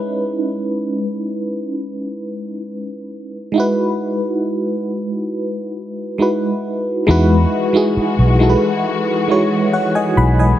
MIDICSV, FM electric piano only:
0, 0, Header, 1, 2, 480
1, 0, Start_track
1, 0, Key_signature, 4, "major"
1, 0, Tempo, 882353
1, 13, Time_signature, 4, 2, 24, 8
1, 5763, End_track
2, 0, Start_track
2, 0, Title_t, "FM electric piano"
2, 0, Program_c, 0, 5
2, 0, Control_c, 0, 64, 127
2, 0, Note_on_c, 0, 56, 67
2, 0, Note_on_c, 0, 61, 63
2, 0, Note_on_c, 0, 63, 67
2, 0, Note_on_c, 0, 64, 62
2, 0, Note_on_c, 0, 71, 75
2, 1662, Note_off_c, 0, 56, 0
2, 1667, Note_off_c, 0, 61, 0
2, 1672, Note_off_c, 0, 63, 0
2, 1678, Note_off_c, 0, 64, 0
2, 1683, Note_off_c, 0, 71, 0
2, 1915, Note_on_c, 0, 56, 67
2, 1925, Note_on_c, 0, 63, 59
2, 1935, Note_on_c, 0, 64, 58
2, 1941, Control_c, 0, 64, 0
2, 1946, Note_on_c, 0, 66, 65
2, 1957, Note_on_c, 0, 71, 75
2, 2039, Control_c, 0, 64, 127
2, 3342, Note_off_c, 0, 56, 0
2, 3347, Note_off_c, 0, 63, 0
2, 3353, Note_off_c, 0, 64, 0
2, 3358, Note_off_c, 0, 66, 0
2, 3363, Note_off_c, 0, 71, 0
2, 3364, Note_on_c, 0, 56, 53
2, 3369, Note_on_c, 0, 63, 51
2, 3375, Note_on_c, 0, 64, 50
2, 3381, Note_on_c, 0, 66, 49
2, 3386, Note_on_c, 0, 71, 64
2, 3838, Note_off_c, 0, 56, 0
2, 3843, Note_off_c, 0, 63, 0
2, 3845, Note_on_c, 0, 56, 101
2, 3849, Note_off_c, 0, 64, 0
2, 3850, Note_on_c, 0, 63, 87
2, 3854, Note_off_c, 0, 66, 0
2, 3855, Note_on_c, 0, 64, 89
2, 3859, Note_off_c, 0, 71, 0
2, 3860, Control_c, 0, 64, 0
2, 3860, Note_on_c, 0, 66, 90
2, 3866, Note_on_c, 0, 71, 104
2, 3941, Control_c, 0, 64, 127
2, 4179, Note_off_c, 0, 56, 0
2, 4181, Note_off_c, 0, 63, 0
2, 4184, Note_off_c, 0, 64, 0
2, 4187, Note_off_c, 0, 66, 0
2, 4190, Note_off_c, 0, 71, 0
2, 4205, Note_on_c, 0, 56, 79
2, 4210, Note_on_c, 0, 63, 73
2, 4215, Note_on_c, 0, 64, 75
2, 4221, Note_on_c, 0, 66, 74
2, 4225, Note_on_c, 0, 68, 82
2, 4539, Note_off_c, 0, 56, 0
2, 4541, Note_off_c, 0, 63, 0
2, 4544, Note_off_c, 0, 64, 0
2, 4547, Note_off_c, 0, 66, 0
2, 4549, Note_off_c, 0, 68, 0
2, 4565, Note_on_c, 0, 56, 80
2, 4570, Note_on_c, 0, 63, 73
2, 4576, Note_on_c, 0, 64, 74
2, 4580, Note_on_c, 0, 66, 70
2, 4586, Note_on_c, 0, 69, 67
2, 4615, Note_off_c, 0, 69, 0
2, 4621, Note_on_c, 0, 71, 85
2, 5009, Note_off_c, 0, 56, 0
2, 5011, Note_off_c, 0, 63, 0
2, 5014, Note_off_c, 0, 64, 0
2, 5017, Note_off_c, 0, 66, 0
2, 5037, Note_off_c, 0, 71, 0
2, 5046, Note_on_c, 0, 56, 74
2, 5051, Note_on_c, 0, 63, 68
2, 5056, Note_on_c, 0, 64, 72
2, 5062, Note_on_c, 0, 66, 67
2, 5067, Note_on_c, 0, 73, 81
2, 5292, Note_off_c, 0, 73, 0
2, 5295, Note_on_c, 0, 78, 65
2, 5298, Note_on_c, 0, 73, 54
2, 5408, Note_off_c, 0, 78, 0
2, 5410, Note_off_c, 0, 73, 0
2, 5414, Note_on_c, 0, 80, 65
2, 5417, Note_on_c, 0, 75, 59
2, 5528, Note_off_c, 0, 80, 0
2, 5529, Note_off_c, 0, 75, 0
2, 5534, Note_on_c, 0, 83, 66
2, 5538, Note_on_c, 0, 78, 54
2, 5648, Note_off_c, 0, 83, 0
2, 5650, Note_off_c, 0, 78, 0
2, 5654, Note_on_c, 0, 80, 60
2, 5658, Note_on_c, 0, 75, 49
2, 5710, Note_off_c, 0, 56, 0
2, 5712, Note_off_c, 0, 63, 0
2, 5715, Note_off_c, 0, 64, 0
2, 5717, Note_off_c, 0, 66, 0
2, 5763, Note_off_c, 0, 75, 0
2, 5763, Note_off_c, 0, 80, 0
2, 5763, End_track
0, 0, End_of_file